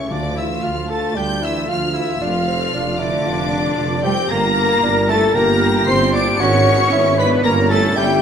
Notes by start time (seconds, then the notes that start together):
Already playing: A3 E4 G4 C#5
0.10 D2 D3 D4 F4 D5 D6
0.36 E3 A3 E4 F4 E5 E6
0.63 D2 F3 F4 F5 F6
0.89 A3 F4 A4 A5 A6
1.15 D2 G3 D4 G4 G5 G6
1.41 E3 A3 E4 F4 E5 E6
1.68 D2 F3 F4 F5 F6
1.93 E3 A3 E4 F4 E5 E6
2.20 F1 F3 A3 D4 F4 F5 F6
2.46 A3 C4 F4
2.74 F1 D4
2.99 D3 A3 D4 E4 F4 D5 D6
3.25 F1 F4
3.51 A3 F4
3.78 F1 D4
4.03 G3 A3 C4 F4 G4 G5 G6
4.29 G1 A#3 A#4 A#5 A#6
4.55 A#3 E4
4.83 G1 D4
5.07 A3 A#3 E4 A4 A5 A6
5.34 G1 A#3 G4 A#4 A#5 A#6
5.60 A#3 E4
5.86 G1 C4 C5 C6 C7
6.13 A#3 D4 E4 D5 D6 D7
6.39 G#1 B3 C#4 E4 F#4 C#5 C#6 C#7
6.65 B3 E4
6.92 G#1 E4
7.18 B3 D4 E4 B4 B5 B6
7.43 G1 A#3 C#4 E4 A#4 A#5 A#6
7.69 A3 C#4 E4 A4 A5 A6
7.96 G1 G3 E4 G4 G5 G6